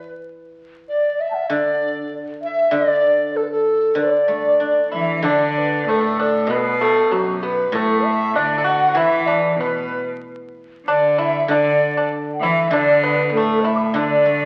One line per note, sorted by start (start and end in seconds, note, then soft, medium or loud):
0.00 0.87 E3 medium
0.88 1.23 D5 medium
0.88 1.21 D5 medium
1.20 1.30 E5 medium
1.20 1.53 E5 medium
1.30 1.51 F#5 medium
1.30 1.36 A5 medium
1.49 2.70 D3 medium
1.49 2.12 D5 medium
1.49 2.13 D5 medium
2.42 2.73 E5 medium
2.42 2.77 E5 medium
2.71 3.94 D3 medium
2.71 3.34 D5 medium
2.75 3.38 D5 medium
3.34 3.44 A4 medium
3.34 3.49 A4 medium
3.43 3.49 B4 medium
3.48 3.98 A4 medium
3.48 3.99 A4 medium
3.95 5.21 D3 medium
3.95 4.92 D5 medium
3.95 4.93 D5 medium
4.28 5.55 A3 soft
4.60 5.87 D4 soft
4.91 5.26 E3 medium
4.91 5.21 E4 medium
4.91 5.16 E5 medium
4.91 5.27 E5 medium
5.19 7.10 D3 medium
5.19 5.27 E5 soft
5.24 5.88 D3 medium
5.24 5.84 D4 medium
5.24 5.51 D5 medium
5.24 5.92 D5 medium
5.51 5.61 D5 medium
5.59 5.91 B4 medium
5.87 6.51 A2 medium
5.87 6.00 A3 medium
5.87 5.97 A4 medium
5.87 6.52 A4 medium
5.95 6.05 B4 medium
6.01 6.17 A3 medium
6.01 6.23 A4 medium
6.19 6.48 D4 medium
6.19 6.51 D5 medium
6.47 7.71 B2 medium
6.47 7.12 B2 medium
6.47 6.78 B3 medium
6.51 6.58 B4 medium
6.51 6.84 B4 medium
6.57 6.65 A4 medium
6.63 6.80 B4 medium
6.80 7.09 A3 medium
6.80 7.09 A4 medium
6.80 7.14 A4 medium
7.11 7.71 F#2 medium
7.11 7.40 F#3 medium
7.11 7.45 F#4 medium
7.11 7.43 F#4 medium
7.43 7.71 B3 medium
7.43 7.77 B4 medium
7.43 7.76 B4 medium
7.72 8.36 A2 medium
7.72 9.59 A2 medium
7.72 8.31 A3 medium
7.72 8.07 A4 medium
7.76 8.05 A4 medium
8.05 8.38 E5 loud
8.05 8.39 E5 medium
8.35 8.97 D3 medium
8.35 8.57 D4 medium
8.35 8.67 D5 medium
8.35 8.68 D5 medium
8.58 8.64 A4 medium
8.64 8.87 F#4 medium
8.64 8.96 F#5 loud
8.64 8.96 F#5 medium
8.88 8.95 F#4 medium
8.95 10.87 E3 medium
8.95 9.59 E3 medium
8.95 9.25 E4 medium
8.95 9.28 E5 medium
8.99 9.31 E5 medium
9.26 9.57 D4 medium
9.26 9.62 D5 medium
9.58 10.07 B2 medium
9.58 10.05 B3 medium
9.58 10.04 B4 medium
9.58 10.08 B4 medium
10.86 11.45 D3 medium
10.86 11.17 D4 medium
10.86 11.20 D5 medium
11.18 11.47 E4 medium
11.18 11.53 E5 loud
11.18 11.52 E5 medium
11.48 12.69 D3 medium
11.48 12.06 D3 medium
11.48 11.93 D4 medium
11.48 12.11 D5 medium
11.48 12.12 D5 medium
11.97 12.11 D4 medium
12.34 12.47 F#5 medium
12.40 12.69 E3 medium
12.40 12.70 E4 medium
12.40 12.73 E5 medium
12.46 12.75 E5 loud
12.71 13.93 D3 medium
12.71 13.35 D3 loud
12.71 13.01 D4 medium
12.71 13.06 D5 medium
12.71 13.05 D5 loud
13.03 13.25 B3 medium
13.03 13.25 B4 loud
13.03 13.34 B4 medium
13.25 13.34 B4 medium
13.30 13.98 A2 medium
13.30 13.35 B3 medium
13.30 13.64 A4 medium
13.34 13.64 A3 medium
13.34 13.66 A4 medium
13.62 13.93 E4 medium
13.62 13.75 E5 medium
13.62 13.95 E5 medium
13.76 13.84 B5 soft
13.76 13.78 D6 soft
13.84 13.86 A5 soft
13.89 13.95 E5 soft
13.94 14.45 D3 medium
13.94 14.45 D4 medium
13.94 14.45 D5 medium
14.25 14.45 A3 soft